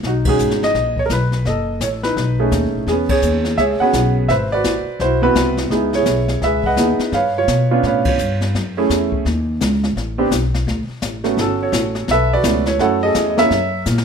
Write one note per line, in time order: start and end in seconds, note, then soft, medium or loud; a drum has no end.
0.03 0.38 B1 medium
0.03 0.26 D#4 medium
0.03 0.11 F#4 medium
0.03 brush sweep soft
0.03 kick soft
0.03 snare soft
0.25 0.72 G#3 medium
0.25 0.72 C#4 soft
0.25 0.72 D#4 medium
0.25 0.72 F#4 medium
0.25 kick medium
0.25 ride medium
0.29 0.64 G#4 medium
0.38 0.73 G#1 medium
0.38 hi-hat pedal soft
0.50 snare soft
0.63 0.99 D#5 loud
0.63 snare soft
0.74 1.09 A#1 medium
0.74 brush sweep soft
0.74 kick soft
0.74 snare soft
0.96 1.02 C#5 medium
0.96 kick soft
1.06 1.44 B1 medium
1.06 1.10 A#4 medium
1.06 hi-hat pedal medium
1.10 1.44 B4 medium
1.10 kick soft
1.10 snare soft
1.32 snare soft
1.45 1.80 F#1 medium
1.45 2.14 A4 medium
1.45 1.83 D#5 medium
1.45 brush sweep soft
1.45 kick soft
1.45 snare soft
1.80 2.15 A1 medium
1.80 1.88 C#5 medium
1.80 kick soft
1.80 snare medium
1.80 hi-hat pedal medium
2.03 2.38 D#4 medium
2.03 2.49 B4 medium
2.03 snare soft
2.16 2.51 B1 medium
2.16 brush sweep soft
2.16 kick soft
2.16 snare soft
2.39 2.85 A3 medium
2.39 2.85 C#4 medium
2.39 2.85 D#4 medium
2.39 2.85 G#4 medium
2.52 2.65 D#2 medium
2.52 kick soft
2.52 snare medium
2.52 hi-hat pedal medium
2.63 2.74 B1 soft
2.75 2.86 A1 medium
2.86 3.21 E2 medium
2.86 2.93 G#4 medium
2.86 brush sweep soft
2.86 kick soft
2.86 snare soft
2.91 3.56 B3 medium
2.91 3.56 C#4 medium
3.09 3.58 G#4 medium
3.09 3.55 C#5 loud
3.09 kick medium
3.09 ride medium
3.22 3.57 D#2 medium
3.22 hi-hat pedal medium
3.45 snare soft
3.57 3.78 C#2 medium
3.57 3.80 G#4 medium
3.57 3.81 C#5 medium
3.57 3.63 E5 medium
3.57 brush sweep soft
3.57 kick soft
3.57 snare soft
3.80 4.27 B3 medium
3.80 4.27 C#4 medium
3.80 4.27 F#4 medium
3.80 4.27 G#4 medium
3.80 4.27 B4 medium
3.80 4.27 C#5 medium
3.80 4.13 F#5 loud
3.80 muted upright bass stroke soft
3.93 4.28 B1 medium
3.93 kick soft
3.93 snare medium
3.93 hi-hat pedal medium
4.28 4.63 G#1 medium
4.28 4.53 B4 medium
4.28 4.97 C5 medium
4.28 4.34 E5 medium
4.28 brush sweep soft
4.28 kick soft
4.28 snare soft
4.52 5.02 F#4 medium
4.52 5.20 B4 medium
4.52 4.97 D5 loud
4.64 4.85 A1 medium
4.64 kick soft
4.64 snare medium
4.64 hi-hat pedal medium
4.86 muted upright bass stroke soft
4.99 5.34 B1 medium
4.99 5.21 E4 medium
4.99 5.21 F#4 medium
4.99 5.21 C5 medium
4.99 brush sweep soft
4.99 kick soft
4.99 snare soft
5.22 5.68 B3 medium
5.22 5.68 C4 medium
5.22 5.68 E4 medium
5.22 5.69 F#4 medium
5.22 5.56 B4 loud
5.35 5.70 C2 medium
5.35 kick soft
5.35 snare medium
5.35 hi-hat pedal soft
5.57 snare soft
5.70 6.05 C#2 medium
5.70 5.72 B3 soft
5.70 6.39 B3 medium
5.70 5.91 D#4 soft
5.70 5.73 E4 soft
5.70 5.91 G#4 medium
5.70 brush sweep soft
5.70 kick soft
5.70 snare soft
5.74 5.95 E4 medium
5.93 6.62 E4 medium
5.93 6.44 G#4 medium
5.93 6.39 C#5 medium
5.93 snare soft
6.06 6.40 B1 medium
6.06 kick soft
6.06 snare medium
6.06 hi-hat pedal medium
6.28 snare soft
6.42 6.76 C#2 medium
6.42 6.78 G#4 medium
6.42 6.65 B4 medium
6.42 6.66 E5 medium
6.42 brush sweep soft
6.42 kick soft
6.42 snare soft
6.64 7.11 B4 medium
6.64 7.11 D#5 medium
6.64 6.98 F#5 medium
6.64 kick medium
6.76 6.97 D#2 medium
6.76 7.14 B3 medium
6.76 7.13 D#4 soft
6.76 7.13 E4 soft
6.76 7.14 G#4 medium
6.76 kick soft
6.76 snare medium
6.76 hi-hat pedal medium
6.98 muted upright bass stroke soft
6.98 snare soft
7.12 7.47 G2 medium
7.12 7.81 B4 medium
7.12 7.37 C#5 medium
7.12 7.36 F5 medium
7.12 brush sweep soft
7.12 kick soft
7.12 snare soft
7.38 7.70 F4 medium
7.38 7.86 C#5 loud
7.48 7.82 B2 medium
7.48 kick soft
7.48 snare medium
7.48 hi-hat pedal medium
7.71 8.17 B3 medium
7.71 8.17 C#4 medium
7.71 8.17 D4 medium
7.71 8.07 F4 medium
7.83 8.18 A2 medium
7.83 8.52 B4 medium
7.83 8.06 F5 medium
7.83 brush sweep soft
7.83 kick soft
7.83 snare soft
7.87 8.07 C#5 medium
8.05 8.52 F4 soft
8.05 8.40 C#5 medium
8.05 kick medium
8.05 ride medium
8.18 8.53 G2 medium
8.18 hi-hat pedal soft
8.41 snare soft
8.54 8.88 F#2 medium
8.54 brush sweep soft
8.54 kick soft
8.54 snare soft
8.77 9.23 A3 medium
8.77 9.23 C#4 medium
8.77 9.23 E4 medium
8.77 9.23 G#4 medium
8.89 9.24 E2 medium
8.89 kick soft
8.89 snare medium
8.89 hi-hat pedal medium
9.12 kick soft
9.25 9.59 D#2 medium
9.25 brush sweep soft
9.25 kick soft
9.25 snare soft
9.61 9.95 C#2 medium
9.61 kick soft
9.61 snare medium
9.61 hi-hat pedal medium
9.84 snare soft
9.96 10.30 A1 medium
9.96 brush sweep soft
9.96 kick soft
9.96 snare soft
10.18 10.30 B3 medium
10.18 10.30 C4 medium
10.18 10.30 D4 medium
10.18 10.30 G4 medium
10.31 10.66 B1 medium
10.31 kick soft
10.31 snare medium
10.31 hi-hat pedal medium
10.54 snare soft
10.67 10.87 D2 medium
10.67 brush sweep medium
10.67 kick soft
10.67 snare soft
10.89 muted upright bass stroke soft
11.02 11.36 A1 medium
11.02 kick soft
11.02 snare medium
11.02 hi-hat pedal medium
11.24 11.36 A3 medium
11.24 11.36 B3 medium
11.24 11.36 C#4 medium
11.24 11.36 F#4 medium
11.24 snare soft
11.37 11.72 G1 medium
11.37 12.06 C#4 medium
11.37 11.61 F#4 medium
11.37 11.61 A4 medium
11.37 brush sweep soft
11.37 kick soft
11.37 snare soft
11.63 12.28 F#4 medium
11.63 12.11 A4 medium
11.63 12.11 C#5 medium
11.72 12.07 A1 medium
11.72 kick soft
11.72 snare medium
11.72 hi-hat pedal medium
11.95 snare soft
12.08 12.43 B1 medium
12.08 12.33 B4 medium
12.08 12.33 E5 medium
12.08 brush sweep soft
12.08 kick soft
12.08 snare soft
12.12 12.77 A4 medium
12.33 12.43 F#4 medium
12.33 12.78 B4 medium
12.33 12.65 D5 loud
12.43 12.78 C#2 medium
12.43 12.64 A3 medium
12.43 12.64 B3 medium
12.43 12.64 C#4 medium
12.43 12.64 F#4 medium
12.43 kick soft
12.43 snare medium
12.43 hi-hat pedal medium
12.66 12.81 C#5 medium
12.66 snare soft
12.79 13.14 F#2 medium
12.79 13.33 A3 medium
12.79 13.33 C#4 medium
12.79 13.33 E4 medium
12.79 13.33 F#4 medium
12.79 13.03 A4 medium
12.79 13.40 C#5 medium
12.79 13.01 F#5 medium
12.79 brush sweep soft
12.79 kick soft
12.79 snare soft
13.03 13.49 G#4 medium
13.03 13.49 A4 medium
13.03 13.28 D#5 loud
13.15 13.49 E2 medium
13.15 kick soft
13.15 snare medium
13.15 hi-hat pedal soft
13.30 13.38 D#5 medium
13.37 13.49 A#3 medium
13.37 13.49 C#4 medium
13.37 13.50 E4 medium
13.37 13.40 A#4 medium
13.37 13.84 E5 loud
13.37 snare medium
13.41 14.05 A#4 medium
13.41 14.05 C#5 medium
13.50 13.85 F#2 medium
13.50 brush sweep soft
13.50 kick soft
13.50 snare soft
13.86 14.05 A#2 medium
13.86 snare soft
13.86 hi-hat pedal medium
13.98 snare medium